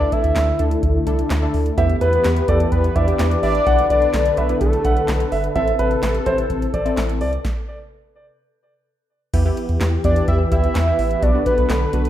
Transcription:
Already playing: analog synth pad D3 A3 E4, analog synth lead D5
0.01 analog polysynth D4 E4 A4
0.12 analog synth lead E5, kick, closed hi-hat
0.24 analog synth bass D2, closed hi-hat
0.36 analog synth bass D2, snare, clap, closed hi-hat
0.59 analog synth bass D2, analog polysynth D4 E4 A4, closed hi-hat
0.71 closed hi-hat
0.83 analog synth bass D2, kick, closed hi-hat
1.07 analog synth bass C2, analog polysynth D4 E4 A4, closed hi-hat
1.19 closed hi-hat
1.30 analog synth bass D2, snare, clap, closed hi-hat
1.42 analog polysynth D4 E4 A4
1.54 analog synth bass D2, open hi-hat
1.66 closed hi-hat
1.78 analog synth bass E2, analog synth pad E3 G4 B4, analog polysynth B3 E4 G4, grand piano E5, kick, closed hi-hat
1.90 closed hi-hat
2.01 analog synth bass E2, analog synth lead B4, grand piano B4, closed hi-hat
2.13 closed hi-hat
2.24 analog synth bass E2, snare, clap, closed hi-hat
2.36 closed hi-hat
2.48 analog synth bass E2, analog polysynth B3 E4 G4, analog synth lead A4, grand piano D5, kick, closed hi-hat
2.60 closed hi-hat
2.72 analog synth bass E2, analog synth lead B4, kick, closed hi-hat
2.84 closed hi-hat
2.95 analog synth bass E2, analog synth lead D5, grand piano E5, kick, closed hi-hat
3.08 analog polysynth B3 E4 G4, closed hi-hat
3.19 analog synth bass E2, snare, clap, closed hi-hat
3.31 closed hi-hat
3.43 analog synth bass A1, analog synth lead D5, grand piano E5, open hi-hat
3.55 closed hi-hat
3.67 analog synth bass B1, analog synth pad D3 A4, analog polysynth B3 D4 F#4, grand piano F#5, kick, closed hi-hat
3.79 closed hi-hat
3.90 analog synth bass B1, analog synth lead D5, grand piano D5, closed hi-hat
4.02 closed hi-hat
4.14 analog synth bass B1, snare, clap, closed hi-hat
4.25 closed hi-hat
4.37 analog synth bass B1, analog polysynth B3 D4 F#4, analog synth lead B4, grand piano E5, closed hi-hat
4.49 analog polysynth B3 D4 E4, closed hi-hat
4.61 analog synth bass B1, analog synth lead A4, kick, closed hi-hat
4.73 closed hi-hat
4.85 analog synth bass B1, grand piano F#5, kick, closed hi-hat
4.97 closed hi-hat
5.08 analog synth bass B1, snare, clap, closed hi-hat
5.20 closed hi-hat
5.32 analog synth bass G1, grand piano E5, open hi-hat
5.44 closed hi-hat
5.56 analog synth bass A1, analog synth pad C3 A4, analog polysynth C4 E4 A4, grand piano E5, kick, closed hi-hat
5.68 closed hi-hat
5.79 analog synth bass A1, grand piano B4, closed hi-hat
5.91 closed hi-hat
6.03 analog synth bass A1, snare, clap, closed hi-hat
6.15 closed hi-hat
6.26 analog synth bass A1, analog polysynth C4 E4 A4, grand piano C5, kick, closed hi-hat
6.38 closed hi-hat
6.50 analog synth bass A1, kick, closed hi-hat
6.62 closed hi-hat
6.74 analog synth bass A1, grand piano D5, kick, closed hi-hat
6.85 analog polysynth C4 E4 A4, closed hi-hat
6.97 analog synth bass A1, snare, clap, closed hi-hat
7.09 closed hi-hat
7.21 analog synth bass C2, grand piano D5, open hi-hat
7.33 closed hi-hat
7.45 kick, snare
9.34 analog synth bass E2, analog synth pad E3 G4 B4, analog polysynth B3 E4 G4, kick, closed hi-hat, crash
9.45 analog polysynth B3 E4 G4
9.57 closed hi-hat
9.69 analog synth bass E2, closed hi-hat
9.81 analog synth bass E2, snare, clap, closed hi-hat
10.04 analog synth bass E2, analog polysynth B3 E4 G4, analog synth lead D5, kick, closed hi-hat
10.16 closed hi-hat
10.28 analog synth bass E2, analog synth lead E5, kick, closed hi-hat
10.52 analog synth bass D2, analog polysynth B3 E4 G4, analog synth lead E5, kick, closed hi-hat
10.64 closed hi-hat
10.75 analog synth bass E2, snare, clap, closed hi-hat
10.87 analog polysynth B3 E4 G4
10.99 analog synth bass A1, open hi-hat
11.11 closed hi-hat
11.23 analog synth bass B1, analog synth pad D3 A4, analog polysynth B3 D4 F#4, analog synth lead D5, kick, closed hi-hat
11.34 analog polysynth B3 D4 F#4
11.46 analog synth lead B4, kick, closed hi-hat
11.58 analog synth bass B1, closed hi-hat
11.70 analog synth bass B1, snare, clap, closed hi-hat
11.93 analog synth bass B1, analog polysynth B3 D4 F#4, closed hi-hat
12.05 closed hi-hat

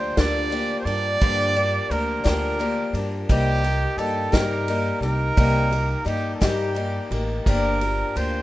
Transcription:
Already playing: upright bass D2, twelve-string acoustic guitar F3 A#3 D4 G4, trumpet C5
0.17 upright bass D2, twelve-string acoustic guitar G2 D3 F3 A#3 D4 G4, trumpet D5, kick, snare, ride
0.50 twelve-string acoustic guitar F3 A#3 D4 G4, ride
0.80 trumpet C5
0.85 upright bass G2, twelve-string acoustic guitar F3 A#3 D4 G4, trumpet D5, ride
1.21 twelve-string acoustic guitar G2 D3 F3 A#3 D4 G4, upright bass G2, kick, ride
1.55 twelve-string acoustic guitar F3 A#3 D4 G4, ride
1.90 upright bass D2, twelve-string acoustic guitar F3 A#3 D4 G4, trumpet A#4, ride
2.24 upright bass D2, twelve-string acoustic guitar G2 D3 F3 A#3 D4 G4, trumpet A#4, kick, snare, ride
2.59 twelve-string acoustic guitar F3 A#3 D4 G4, ride
2.93 upright bass G2, twelve-string acoustic guitar F3 A#3 D4 G4, ride
3.29 upright bass C2, twelve-string acoustic guitar C3 G3 A#3 D#4 G4, trumpet G4, kick, ride
3.64 twelve-string acoustic guitar A#3 D#4 G4, ride
3.97 upright bass G2, twelve-string acoustic guitar G3 A#3 D#4 G4, trumpet A4, ride
4.32 upright bass G2, twelve-string acoustic guitar C3 G3 A#3 D#4 G4, trumpet A#4, kick, snare, ride
4.68 twelve-string acoustic guitar G3 A#3 D#4 G4, ride
5.00 upright bass C2, twelve-string acoustic guitar D#4 G4, trumpet A#4, ride
5.05 twelve-string acoustic guitar A#3
5.37 upright bass C2, twelve-string acoustic guitar C3 G3 A#3 D#4 G4, kick, ride
5.71 twelve-string acoustic guitar A#3 D#4 G4, ride
6.05 upright bass G2, twelve-string acoustic guitar G3 A#3 D#4 G4, trumpet G4, ride
6.35 trumpet A4
6.41 upright bass G2, twelve-string acoustic guitar C3 G3 A#3 D#4 G4, trumpet G4, kick, snare, ride
6.75 twelve-string acoustic guitar G3 A#3 D#4 G4, ride
7.11 upright bass A1, twelve-string acoustic guitar A#3 D#4 G4, ride
7.45 upright bass G1, twelve-string acoustic guitar G2 D3 F3 A#3 D4 G4, trumpet A#4, kick, ride
7.81 twelve-string acoustic guitar F3 A#3 D4 G4, ride
8.16 upright bass D2, twelve-string acoustic guitar F3 A#3 D4 G4, trumpet C5, ride

